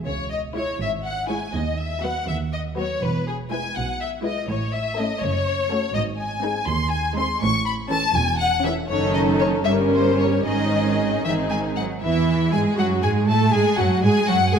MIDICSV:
0, 0, Header, 1, 6, 480
1, 0, Start_track
1, 0, Key_signature, 4, "minor"
1, 0, Tempo, 496278
1, 49, Time_signature, 6, 3, 24, 8
1, 2927, Tempo, 488998
1, 8687, Tempo, 522193
1, 11567, Tempo, 499168
1, 14031, End_track
2, 0, Start_track
2, 0, Title_t, "Violin section"
2, 0, Program_c, 0, 48
2, 52, Note_on_c, 0, 73, 62
2, 280, Note_off_c, 0, 73, 0
2, 300, Note_on_c, 0, 75, 51
2, 378, Note_off_c, 0, 75, 0
2, 547, Note_on_c, 0, 73, 61
2, 780, Note_off_c, 0, 73, 0
2, 787, Note_on_c, 0, 76, 66
2, 865, Note_off_c, 0, 76, 0
2, 1014, Note_on_c, 0, 78, 62
2, 1248, Note_on_c, 0, 80, 52
2, 1249, Note_off_c, 0, 78, 0
2, 1485, Note_off_c, 0, 80, 0
2, 1491, Note_on_c, 0, 75, 56
2, 1730, Note_off_c, 0, 75, 0
2, 1734, Note_on_c, 0, 76, 58
2, 1963, Note_on_c, 0, 78, 67
2, 1969, Note_off_c, 0, 76, 0
2, 2202, Note_off_c, 0, 78, 0
2, 2205, Note_on_c, 0, 76, 63
2, 2282, Note_off_c, 0, 76, 0
2, 2443, Note_on_c, 0, 75, 62
2, 2521, Note_off_c, 0, 75, 0
2, 2684, Note_on_c, 0, 73, 54
2, 2921, Note_off_c, 0, 73, 0
2, 2925, Note_on_c, 0, 71, 59
2, 3168, Note_off_c, 0, 71, 0
2, 3172, Note_on_c, 0, 68, 46
2, 3251, Note_off_c, 0, 68, 0
2, 3406, Note_on_c, 0, 80, 63
2, 3641, Note_off_c, 0, 80, 0
2, 3644, Note_on_c, 0, 78, 67
2, 3884, Note_off_c, 0, 78, 0
2, 3890, Note_on_c, 0, 76, 60
2, 3969, Note_off_c, 0, 76, 0
2, 4127, Note_on_c, 0, 75, 57
2, 4359, Note_off_c, 0, 75, 0
2, 4369, Note_on_c, 0, 73, 60
2, 4599, Note_off_c, 0, 73, 0
2, 4606, Note_on_c, 0, 76, 66
2, 4840, Note_off_c, 0, 76, 0
2, 4842, Note_on_c, 0, 75, 67
2, 5074, Note_on_c, 0, 73, 79
2, 5076, Note_off_c, 0, 75, 0
2, 5786, Note_on_c, 0, 75, 69
2, 5789, Note_off_c, 0, 73, 0
2, 5865, Note_off_c, 0, 75, 0
2, 6026, Note_on_c, 0, 80, 73
2, 6498, Note_off_c, 0, 80, 0
2, 6509, Note_on_c, 0, 84, 86
2, 6752, Note_off_c, 0, 84, 0
2, 6757, Note_on_c, 0, 80, 74
2, 6993, Note_off_c, 0, 80, 0
2, 7000, Note_on_c, 0, 84, 74
2, 7234, Note_off_c, 0, 84, 0
2, 7239, Note_on_c, 0, 85, 82
2, 7472, Note_off_c, 0, 85, 0
2, 7474, Note_on_c, 0, 83, 68
2, 7552, Note_off_c, 0, 83, 0
2, 7716, Note_on_c, 0, 81, 91
2, 7952, Note_off_c, 0, 81, 0
2, 7953, Note_on_c, 0, 80, 93
2, 8199, Note_off_c, 0, 80, 0
2, 8201, Note_on_c, 0, 78, 86
2, 8440, Note_off_c, 0, 78, 0
2, 8444, Note_on_c, 0, 76, 67
2, 8523, Note_off_c, 0, 76, 0
2, 8683, Note_on_c, 0, 73, 78
2, 8911, Note_off_c, 0, 73, 0
2, 8913, Note_on_c, 0, 75, 64
2, 8986, Note_off_c, 0, 75, 0
2, 9146, Note_on_c, 0, 73, 71
2, 9219, Note_off_c, 0, 73, 0
2, 9386, Note_on_c, 0, 76, 78
2, 9460, Note_off_c, 0, 76, 0
2, 9626, Note_on_c, 0, 72, 73
2, 9866, Note_off_c, 0, 72, 0
2, 9873, Note_on_c, 0, 73, 58
2, 10113, Note_on_c, 0, 75, 69
2, 10118, Note_off_c, 0, 73, 0
2, 10836, Note_off_c, 0, 75, 0
2, 10846, Note_on_c, 0, 76, 71
2, 10920, Note_off_c, 0, 76, 0
2, 11085, Note_on_c, 0, 80, 70
2, 11159, Note_off_c, 0, 80, 0
2, 11317, Note_on_c, 0, 78, 61
2, 11391, Note_off_c, 0, 78, 0
2, 11565, Note_on_c, 0, 76, 65
2, 12045, Note_off_c, 0, 76, 0
2, 12048, Note_on_c, 0, 80, 72
2, 12125, Note_off_c, 0, 80, 0
2, 12297, Note_on_c, 0, 78, 72
2, 12374, Note_off_c, 0, 78, 0
2, 12531, Note_on_c, 0, 80, 75
2, 12608, Note_off_c, 0, 80, 0
2, 12764, Note_on_c, 0, 81, 73
2, 13003, Note_off_c, 0, 81, 0
2, 13006, Note_on_c, 0, 80, 77
2, 13249, Note_off_c, 0, 80, 0
2, 13252, Note_on_c, 0, 78, 68
2, 13486, Note_on_c, 0, 80, 83
2, 13491, Note_off_c, 0, 78, 0
2, 13723, Note_off_c, 0, 80, 0
2, 13727, Note_on_c, 0, 78, 92
2, 13963, Note_on_c, 0, 80, 72
2, 13967, Note_off_c, 0, 78, 0
2, 14031, Note_off_c, 0, 80, 0
2, 14031, End_track
3, 0, Start_track
3, 0, Title_t, "Violin section"
3, 0, Program_c, 1, 48
3, 536, Note_on_c, 1, 73, 43
3, 537, Note_on_c, 1, 64, 47
3, 718, Note_off_c, 1, 73, 0
3, 719, Note_off_c, 1, 64, 0
3, 1250, Note_on_c, 1, 73, 44
3, 1252, Note_on_c, 1, 64, 41
3, 1430, Note_off_c, 1, 73, 0
3, 1431, Note_off_c, 1, 64, 0
3, 1963, Note_on_c, 1, 66, 46
3, 1964, Note_on_c, 1, 71, 46
3, 2141, Note_off_c, 1, 66, 0
3, 2142, Note_off_c, 1, 71, 0
3, 2680, Note_on_c, 1, 71, 45
3, 2681, Note_on_c, 1, 66, 43
3, 2862, Note_off_c, 1, 66, 0
3, 2862, Note_off_c, 1, 71, 0
3, 3401, Note_on_c, 1, 71, 51
3, 3402, Note_on_c, 1, 64, 44
3, 3582, Note_off_c, 1, 71, 0
3, 3583, Note_off_c, 1, 64, 0
3, 4120, Note_on_c, 1, 71, 48
3, 4121, Note_on_c, 1, 64, 41
3, 4299, Note_off_c, 1, 71, 0
3, 4300, Note_off_c, 1, 64, 0
3, 4836, Note_on_c, 1, 64, 46
3, 4836, Note_on_c, 1, 69, 52
3, 5012, Note_off_c, 1, 64, 0
3, 5012, Note_off_c, 1, 69, 0
3, 5549, Note_on_c, 1, 69, 51
3, 5552, Note_on_c, 1, 66, 51
3, 5727, Note_off_c, 1, 69, 0
3, 5729, Note_off_c, 1, 66, 0
3, 6265, Note_on_c, 1, 68, 59
3, 6268, Note_on_c, 1, 63, 64
3, 6446, Note_off_c, 1, 68, 0
3, 6447, Note_off_c, 1, 63, 0
3, 6987, Note_on_c, 1, 63, 51
3, 6992, Note_on_c, 1, 68, 55
3, 7170, Note_off_c, 1, 63, 0
3, 7173, Note_off_c, 1, 68, 0
3, 7707, Note_on_c, 1, 61, 58
3, 7707, Note_on_c, 1, 69, 58
3, 7890, Note_off_c, 1, 61, 0
3, 7890, Note_off_c, 1, 69, 0
3, 8436, Note_on_c, 1, 61, 62
3, 8436, Note_on_c, 1, 69, 53
3, 8621, Note_off_c, 1, 61, 0
3, 8621, Note_off_c, 1, 69, 0
3, 8685, Note_on_c, 1, 63, 58
3, 8685, Note_on_c, 1, 69, 59
3, 9349, Note_off_c, 1, 63, 0
3, 9349, Note_off_c, 1, 69, 0
3, 9384, Note_on_c, 1, 70, 54
3, 9385, Note_on_c, 1, 61, 55
3, 10101, Note_off_c, 1, 70, 0
3, 10111, Note_on_c, 1, 63, 48
3, 10113, Note_on_c, 1, 68, 51
3, 10116, Note_off_c, 1, 61, 0
3, 10833, Note_off_c, 1, 68, 0
3, 10835, Note_off_c, 1, 63, 0
3, 10844, Note_on_c, 1, 68, 45
3, 10845, Note_on_c, 1, 63, 49
3, 11365, Note_off_c, 1, 63, 0
3, 11365, Note_off_c, 1, 68, 0
3, 11560, Note_on_c, 1, 64, 66
3, 12018, Note_off_c, 1, 64, 0
3, 12043, Note_on_c, 1, 68, 71
3, 12286, Note_on_c, 1, 66, 67
3, 12291, Note_off_c, 1, 68, 0
3, 12522, Note_on_c, 1, 68, 61
3, 12531, Note_off_c, 1, 66, 0
3, 12768, Note_off_c, 1, 68, 0
3, 12770, Note_on_c, 1, 69, 67
3, 13006, Note_off_c, 1, 69, 0
3, 13017, Note_on_c, 1, 68, 72
3, 13249, Note_off_c, 1, 68, 0
3, 13257, Note_on_c, 1, 66, 61
3, 13488, Note_on_c, 1, 68, 68
3, 13494, Note_off_c, 1, 66, 0
3, 13724, Note_off_c, 1, 68, 0
3, 13726, Note_on_c, 1, 66, 72
3, 13803, Note_off_c, 1, 66, 0
3, 13965, Note_on_c, 1, 68, 59
3, 14031, Note_off_c, 1, 68, 0
3, 14031, End_track
4, 0, Start_track
4, 0, Title_t, "Viola section"
4, 0, Program_c, 2, 48
4, 537, Note_on_c, 2, 56, 43
4, 537, Note_on_c, 2, 64, 45
4, 718, Note_off_c, 2, 64, 0
4, 719, Note_off_c, 2, 56, 0
4, 1258, Note_on_c, 2, 56, 48
4, 1260, Note_on_c, 2, 64, 49
4, 1434, Note_off_c, 2, 56, 0
4, 1435, Note_off_c, 2, 64, 0
4, 1965, Note_on_c, 2, 54, 39
4, 1967, Note_on_c, 2, 59, 43
4, 2142, Note_off_c, 2, 54, 0
4, 2143, Note_off_c, 2, 59, 0
4, 2686, Note_on_c, 2, 54, 51
4, 2688, Note_on_c, 2, 59, 45
4, 2865, Note_off_c, 2, 54, 0
4, 2866, Note_off_c, 2, 59, 0
4, 3407, Note_on_c, 2, 56, 50
4, 3407, Note_on_c, 2, 64, 49
4, 3586, Note_off_c, 2, 56, 0
4, 3586, Note_off_c, 2, 64, 0
4, 4124, Note_on_c, 2, 56, 50
4, 4126, Note_on_c, 2, 64, 54
4, 4302, Note_off_c, 2, 56, 0
4, 4303, Note_off_c, 2, 64, 0
4, 4837, Note_on_c, 2, 61, 49
4, 4839, Note_on_c, 2, 57, 48
4, 5013, Note_off_c, 2, 61, 0
4, 5014, Note_off_c, 2, 57, 0
4, 5552, Note_on_c, 2, 57, 53
4, 5552, Note_on_c, 2, 61, 54
4, 5728, Note_off_c, 2, 57, 0
4, 5729, Note_off_c, 2, 61, 0
4, 6263, Note_on_c, 2, 56, 48
4, 6264, Note_on_c, 2, 60, 54
4, 6445, Note_off_c, 2, 56, 0
4, 6445, Note_off_c, 2, 60, 0
4, 6989, Note_on_c, 2, 56, 61
4, 6989, Note_on_c, 2, 60, 61
4, 7171, Note_off_c, 2, 56, 0
4, 7171, Note_off_c, 2, 60, 0
4, 7715, Note_on_c, 2, 61, 54
4, 7717, Note_on_c, 2, 52, 57
4, 7894, Note_off_c, 2, 61, 0
4, 7895, Note_off_c, 2, 52, 0
4, 8444, Note_on_c, 2, 52, 66
4, 8445, Note_on_c, 2, 61, 66
4, 8626, Note_off_c, 2, 52, 0
4, 8626, Note_off_c, 2, 61, 0
4, 8693, Note_on_c, 2, 51, 60
4, 8695, Note_on_c, 2, 61, 64
4, 9353, Note_off_c, 2, 51, 0
4, 9354, Note_off_c, 2, 61, 0
4, 9390, Note_on_c, 2, 55, 53
4, 9390, Note_on_c, 2, 61, 53
4, 10104, Note_off_c, 2, 55, 0
4, 10104, Note_off_c, 2, 61, 0
4, 10119, Note_on_c, 2, 51, 56
4, 10121, Note_on_c, 2, 61, 48
4, 10840, Note_off_c, 2, 61, 0
4, 10842, Note_off_c, 2, 51, 0
4, 10852, Note_on_c, 2, 60, 45
4, 10853, Note_on_c, 2, 51, 46
4, 11369, Note_off_c, 2, 51, 0
4, 11379, Note_off_c, 2, 60, 0
4, 11564, Note_on_c, 2, 52, 67
4, 12020, Note_off_c, 2, 52, 0
4, 12054, Note_on_c, 2, 56, 62
4, 12292, Note_on_c, 2, 54, 62
4, 12297, Note_off_c, 2, 56, 0
4, 12530, Note_on_c, 2, 56, 68
4, 12534, Note_off_c, 2, 54, 0
4, 12770, Note_on_c, 2, 57, 72
4, 12772, Note_off_c, 2, 56, 0
4, 13008, Note_on_c, 2, 56, 76
4, 13011, Note_off_c, 2, 57, 0
4, 13245, Note_off_c, 2, 56, 0
4, 13249, Note_on_c, 2, 54, 62
4, 13485, Note_off_c, 2, 54, 0
4, 13492, Note_on_c, 2, 56, 63
4, 13731, Note_off_c, 2, 56, 0
4, 13731, Note_on_c, 2, 54, 65
4, 13807, Note_off_c, 2, 54, 0
4, 13969, Note_on_c, 2, 56, 62
4, 14031, Note_off_c, 2, 56, 0
4, 14031, End_track
5, 0, Start_track
5, 0, Title_t, "Cello section"
5, 0, Program_c, 3, 48
5, 49, Note_on_c, 3, 49, 56
5, 635, Note_off_c, 3, 49, 0
5, 779, Note_on_c, 3, 44, 46
5, 1347, Note_off_c, 3, 44, 0
5, 1494, Note_on_c, 3, 39, 58
5, 2058, Note_off_c, 3, 39, 0
5, 2202, Note_on_c, 3, 39, 52
5, 2778, Note_off_c, 3, 39, 0
5, 2926, Note_on_c, 3, 40, 61
5, 3500, Note_off_c, 3, 40, 0
5, 3651, Note_on_c, 3, 47, 49
5, 4218, Note_off_c, 3, 47, 0
5, 4366, Note_on_c, 3, 45, 63
5, 4930, Note_off_c, 3, 45, 0
5, 5078, Note_on_c, 3, 42, 52
5, 5644, Note_off_c, 3, 42, 0
5, 5791, Note_on_c, 3, 44, 71
5, 6362, Note_off_c, 3, 44, 0
5, 6509, Note_on_c, 3, 39, 60
5, 7088, Note_off_c, 3, 39, 0
5, 7234, Note_on_c, 3, 45, 76
5, 7807, Note_off_c, 3, 45, 0
5, 7955, Note_on_c, 3, 40, 69
5, 8539, Note_off_c, 3, 40, 0
5, 8686, Note_on_c, 3, 42, 66
5, 9349, Note_off_c, 3, 42, 0
5, 9388, Note_on_c, 3, 43, 53
5, 10116, Note_on_c, 3, 44, 53
5, 10118, Note_off_c, 3, 43, 0
5, 10838, Note_off_c, 3, 44, 0
5, 10850, Note_on_c, 3, 44, 47
5, 10850, Note_on_c, 3, 52, 46
5, 10924, Note_off_c, 3, 52, 0
5, 11090, Note_on_c, 3, 56, 46
5, 11164, Note_off_c, 3, 56, 0
5, 11330, Note_on_c, 3, 54, 56
5, 11368, Note_off_c, 3, 44, 0
5, 11563, Note_off_c, 3, 54, 0
5, 11569, Note_on_c, 3, 52, 66
5, 12047, Note_off_c, 3, 52, 0
5, 12052, Note_on_c, 3, 56, 64
5, 12296, Note_off_c, 3, 56, 0
5, 12297, Note_on_c, 3, 54, 59
5, 12536, Note_off_c, 3, 54, 0
5, 12536, Note_on_c, 3, 56, 57
5, 12770, Note_off_c, 3, 56, 0
5, 12776, Note_on_c, 3, 57, 68
5, 13014, Note_off_c, 3, 57, 0
5, 13014, Note_on_c, 3, 56, 70
5, 13252, Note_off_c, 3, 56, 0
5, 13255, Note_on_c, 3, 54, 64
5, 13493, Note_off_c, 3, 54, 0
5, 13493, Note_on_c, 3, 56, 61
5, 13732, Note_off_c, 3, 56, 0
5, 13733, Note_on_c, 3, 54, 59
5, 13810, Note_off_c, 3, 54, 0
5, 13970, Note_on_c, 3, 56, 55
5, 14031, Note_off_c, 3, 56, 0
5, 14031, End_track
6, 0, Start_track
6, 0, Title_t, "Double bass section"
6, 0, Program_c, 4, 48
6, 44, Note_on_c, 4, 37, 44
6, 632, Note_off_c, 4, 37, 0
6, 782, Note_on_c, 4, 32, 46
6, 1349, Note_off_c, 4, 32, 0
6, 1496, Note_on_c, 4, 39, 50
6, 2060, Note_off_c, 4, 39, 0
6, 2205, Note_on_c, 4, 39, 47
6, 2780, Note_off_c, 4, 39, 0
6, 2925, Note_on_c, 4, 28, 54
6, 3500, Note_off_c, 4, 28, 0
6, 3648, Note_on_c, 4, 35, 58
6, 4217, Note_off_c, 4, 35, 0
6, 4363, Note_on_c, 4, 33, 56
6, 4929, Note_off_c, 4, 33, 0
6, 5072, Note_on_c, 4, 30, 59
6, 5641, Note_off_c, 4, 30, 0
6, 5785, Note_on_c, 4, 32, 58
6, 6359, Note_off_c, 4, 32, 0
6, 6512, Note_on_c, 4, 39, 60
6, 7090, Note_off_c, 4, 39, 0
6, 7238, Note_on_c, 4, 33, 69
6, 7809, Note_off_c, 4, 33, 0
6, 7955, Note_on_c, 4, 28, 65
6, 8539, Note_off_c, 4, 28, 0
6, 8690, Note_on_c, 4, 30, 57
6, 9352, Note_off_c, 4, 30, 0
6, 9388, Note_on_c, 4, 31, 55
6, 10117, Note_on_c, 4, 32, 53
6, 10118, Note_off_c, 4, 31, 0
6, 10838, Note_off_c, 4, 32, 0
6, 10853, Note_on_c, 4, 32, 46
6, 11369, Note_off_c, 4, 32, 0
6, 11569, Note_on_c, 4, 40, 56
6, 12023, Note_off_c, 4, 40, 0
6, 12060, Note_on_c, 4, 44, 63
6, 12137, Note_off_c, 4, 44, 0
6, 12298, Note_on_c, 4, 42, 62
6, 12532, Note_off_c, 4, 42, 0
6, 12539, Note_on_c, 4, 44, 67
6, 12776, Note_off_c, 4, 44, 0
6, 12778, Note_on_c, 4, 45, 67
6, 13015, Note_off_c, 4, 45, 0
6, 13017, Note_on_c, 4, 44, 67
6, 13094, Note_off_c, 4, 44, 0
6, 13253, Note_on_c, 4, 42, 68
6, 13330, Note_off_c, 4, 42, 0
6, 13496, Note_on_c, 4, 44, 72
6, 13573, Note_off_c, 4, 44, 0
6, 13735, Note_on_c, 4, 42, 68
6, 13966, Note_off_c, 4, 42, 0
6, 13976, Note_on_c, 4, 44, 58
6, 14031, Note_off_c, 4, 44, 0
6, 14031, End_track
0, 0, End_of_file